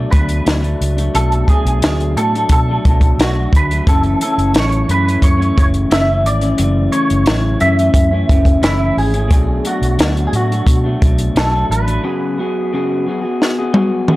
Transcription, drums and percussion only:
0.12 kick medium
0.12 closed hi-hat medium
0.29 closed hi-hat soft
0.46 snare medium
0.46 closed hi-hat medium
0.64 closed hi-hat soft
0.82 closed hi-hat medium
0.98 closed hi-hat medium
1.15 closed hi-hat medium
1.32 closed hi-hat soft
1.48 kick medium
1.48 closed hi-hat medium
1.67 closed hi-hat soft
1.82 snare medium
1.82 closed hi-hat medium
2.00 closed hi-hat soft
2.17 closed hi-hat medium
2.35 closed hi-hat soft
2.49 kick medium
2.49 closed hi-hat medium
2.85 kick medium
2.85 closed hi-hat medium
3.01 kick medium
3.01 closed hi-hat soft
3.19 snare loud
3.19 closed hi-hat medium
3.53 kick medium
3.53 closed hi-hat medium
3.71 closed hi-hat soft
3.87 kick loud
3.87 closed hi-hat medium
4.03 closed hi-hat soft
4.21 closed hi-hat medium
4.39 closed hi-hat soft
4.54 snare medium
4.54 closed hi-hat medium
4.72 closed hi-hat soft
4.89 closed hi-hat medium
5.08 closed hi-hat soft
5.22 kick medium
5.22 closed hi-hat medium
5.42 closed hi-hat soft
5.58 kick medium
5.58 closed hi-hat medium
5.74 closed hi-hat soft
5.91 snare loud
5.91 closed hi-hat medium
6.26 closed hi-hat medium
6.41 closed hi-hat soft
6.58 closed hi-hat medium
6.92 closed hi-hat medium
7.10 closed hi-hat soft
7.26 snare loud
7.26 closed hi-hat medium
7.60 closed hi-hat medium
7.79 closed hi-hat soft
7.94 kick medium
7.94 closed hi-hat loud
8.29 kick medium
8.29 closed hi-hat medium
8.45 kick medium
8.45 closed hi-hat soft
8.63 snare loud
8.63 closed hi-hat medium
8.98 open hi-hat soft
9.14 closed hi-hat soft
9.31 kick loud
9.31 closed hi-hat medium
9.65 closed hi-hat medium
9.83 closed hi-hat soft
9.99 snare loud
9.99 closed hi-hat medium
10.17 closed hi-hat soft
10.33 closed hi-hat medium
10.52 closed hi-hat soft
10.67 kick medium
10.67 closed hi-hat medium
11.02 kick medium
11.02 closed hi-hat medium
11.18 closed hi-hat soft
11.36 snare loud
11.36 closed hi-hat medium
11.72 closed hi-hat medium
11.88 closed hi-hat soft
13.42 snare medium
13.74 high tom medium
14.08 mid tom medium

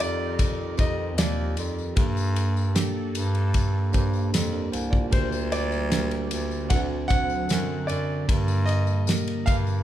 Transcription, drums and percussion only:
0.00 ride medium
0.39 kick medium
0.39 ride medium
0.39 tambourine medium
0.78 kick medium
0.78 ride medium
0.78 tambourine soft
1.18 snare loud
1.18 ride medium
1.18 tambourine medium
1.57 ride medium
1.57 tambourine medium
1.78 tambourine soft
1.97 kick loud
1.97 ride medium
2.17 tambourine soft
2.36 ride medium
2.36 tambourine soft
2.57 tambourine soft
2.76 snare loud
2.76 ride medium
2.76 tambourine medium
3.15 ride medium
3.15 tambourine medium
3.35 ride soft
3.54 kick medium
3.54 ride medium
3.54 tambourine soft
3.93 kick medium
3.93 ride medium
3.93 tambourine medium
4.13 tambourine soft
4.34 snare loud
4.34 ride medium
4.34 tambourine medium
4.73 ride medium
4.73 tambourine medium
4.93 kick medium
5.12 kick loud
5.12 ride medium
5.32 tambourine medium
5.52 ride medium
5.52 tambourine soft
5.72 tambourine soft
5.92 snare loud
5.92 ride medium
5.92 tambourine medium
6.11 ride soft
6.31 ride medium
6.31 tambourine medium
6.51 tambourine soft
6.70 kick medium
6.70 ride medium
6.70 tambourine medium
7.09 kick medium
7.09 ride medium
7.09 tambourine soft
7.30 tambourine soft
7.49 snare loud
7.49 ride medium
7.49 tambourine medium
7.88 ride medium
7.88 tambourine soft
8.29 kick loud
8.29 ride medium
8.48 tambourine soft
8.67 ride medium
8.67 tambourine soft
8.87 tambourine soft
9.07 snare loud
9.07 ride medium
9.07 tambourine medium
9.28 ride soft
9.46 kick medium
9.46 ride medium
9.46 tambourine medium
9.67 tambourine soft

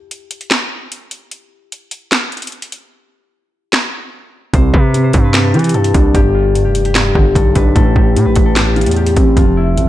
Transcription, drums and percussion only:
0.11 closed hi-hat medium
0.31 closed hi-hat medium
0.41 closed hi-hat soft
0.51 finger snap loud
0.51 snare loud
0.51 closed hi-hat medium
0.92 closed hi-hat medium
1.11 closed hi-hat medium
1.31 closed hi-hat medium
1.72 closed hi-hat medium
1.91 closed hi-hat medium
2.12 finger snap loud
2.12 snare loud
2.12 closed hi-hat medium
2.32 closed hi-hat soft
2.37 closed hi-hat medium
2.42 closed hi-hat medium
2.47 closed hi-hat medium
2.52 closed hi-hat soft
2.62 closed hi-hat medium
2.72 closed hi-hat medium
3.73 finger snap loud
3.73 snare loud
4.54 kick loud
4.54 closed hi-hat medium
4.74 kick medium
4.94 closed hi-hat medium
5.13 kick medium
5.13 closed hi-hat medium
5.34 finger snap loud
5.34 snare loud
5.34 closed hi-hat medium
5.54 closed hi-hat soft
5.59 closed hi-hat medium
5.64 closed hi-hat medium
5.69 closed hi-hat medium
5.74 closed hi-hat medium
5.84 closed hi-hat medium
5.94 kick medium
5.94 closed hi-hat medium
6.15 kick loud
6.15 closed hi-hat medium
6.55 closed hi-hat medium
6.75 closed hi-hat medium
6.85 closed hi-hat medium
6.95 finger snap loud
6.95 snare loud
6.95 closed hi-hat medium
7.15 kick loud
7.35 kick loud
7.35 closed hi-hat medium
7.55 kick medium
7.55 closed hi-hat medium
7.76 kick loud
7.76 closed hi-hat medium
7.96 kick medium
8.16 closed hi-hat medium
8.36 kick medium
8.36 closed hi-hat medium
8.56 finger snap loud
8.56 snare loud
8.56 closed hi-hat medium
8.76 closed hi-hat soft
8.81 closed hi-hat medium
8.86 closed hi-hat medium
8.91 closed hi-hat medium
8.96 closed hi-hat soft
9.06 closed hi-hat medium
9.16 kick medium
9.16 closed hi-hat medium
9.37 kick loud
9.37 closed hi-hat medium
9.78 closed hi-hat medium

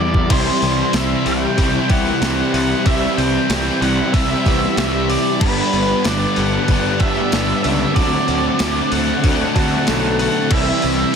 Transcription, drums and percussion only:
0.14 kick medium
0.30 kick loud
0.30 open hi-hat medium
0.30 crash loud
0.62 open hi-hat medium
0.93 snare loud
0.93 open hi-hat medium
0.93 tambourine loud
1.26 open hi-hat medium
1.58 kick medium
1.58 open hi-hat medium
1.90 kick medium
1.90 open hi-hat medium
2.07 snare soft
2.22 snare medium
2.22 open hi-hat medium
2.22 tambourine medium
2.54 open hi-hat medium
2.86 kick loud
2.86 open hi-hat medium
3.18 open hi-hat medium
3.50 snare loud
3.50 open hi-hat loud
3.50 tambourine medium
3.82 open hi-hat medium
4.14 kick medium
4.14 open hi-hat medium
4.46 kick medium
4.46 open hi-hat medium
4.63 snare soft
4.77 snare medium
4.77 open hi-hat medium
4.77 tambourine medium
5.10 open hi-hat medium
5.41 kick loud
5.41 crash loud
5.73 open hi-hat medium
6.04 snare loud
6.04 open hi-hat medium
6.04 tambourine medium
6.36 open hi-hat medium
6.68 kick medium
6.68 open hi-hat medium
7.00 kick loud
7.00 open hi-hat medium
7.17 snare soft
7.32 snare loud
7.32 open hi-hat medium
7.32 tambourine loud
7.64 open hi-hat medium
7.96 kick loud
7.96 open hi-hat medium
8.28 open hi-hat medium
8.59 snare loud
8.59 open hi-hat medium
8.59 tambourine loud
8.92 open hi-hat medium
9.24 kick medium
9.24 open hi-hat medium
9.56 kick medium
9.56 open hi-hat medium
9.72 snare soft
9.87 snare medium
9.87 open hi-hat medium
9.87 tambourine medium
10.19 open hi-hat medium
10.51 kick loud
10.51 crash loud
10.82 open hi-hat medium

